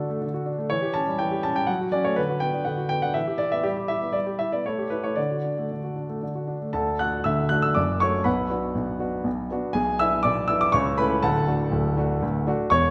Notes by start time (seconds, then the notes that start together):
Already playing: D3 A3 D4 F#4 A4
0.10 A3
0.22 D3
0.34 F#4
0.46 D4
0.58 A3
0.70 E3 C#5
0.82 G4
0.94 C#4 A5
1.07 G3
1.19 E3 G5
1.31 G4
1.43 C#4 A5
1.56 G3 G5
1.67 F#3 F#5
1.81 F#4
1.92 C#4 D5
2.04 A3 C#5
2.16 D3 B4
2.29 F#4
2.40 B3 G5
2.54 D4
2.65 D3 F#5
2.78 F#4
2.89 B3 G5
3.02 D4 F#5
3.14 E3 E5
3.27 G4
3.38 E4 D5
3.52 B3 E5
3.63 G3 G4
3.77 G4
3.88 E4 E5
4.01 B3
4.13 G3 D5
4.27 G4
4.39 E4 E5
4.52 B3 D5
4.66 A3 C#5
4.79 G4
4.90 E4 B4
5.03 A3 C#5
5.16 D3 D5
5.31 F#4
5.44 D4
5.59 A3
5.71 D3
5.84 F#4
5.96 D4
6.10 A3
6.23 D3
6.35 F#4
6.47 D4
6.62 A3
6.73 D2 D3 A4 A5
6.99 A3 D4 F#4 F#5 F#6
7.24 D2 D3 E5 E6
7.49 A3 D4 F#4 F#6
7.62 E6
7.75 F#1 F#2 D5 D6
8.00 A3 D4 F#4 C#5 C#6
8.24 B1 B2 B4 F#5 B5
8.50 B3 D4 F#4
8.75 B1 B2
8.99 B3 D4 F#4
9.24 B1 B2
9.51 B3 D4 F#4
9.73 B1 B2 G#4 G#5
9.99 B3 D4 E4 E5 E6
10.23 B1 B2 D5 D6
10.48 B3 D4 E4 E6
10.61 D6
10.72 C#2 C#3 C#5 C#6
10.98 A3 C#4 E4 B4 B5
11.22 D1 D2 A4 F#5 A5
11.48 A3 D4 F#4
11.71 D1 D2
11.97 A3 D4 F#4
12.22 D1 D2
12.47 A3 D4 F#4
12.70 E1 E2 C#5 C#6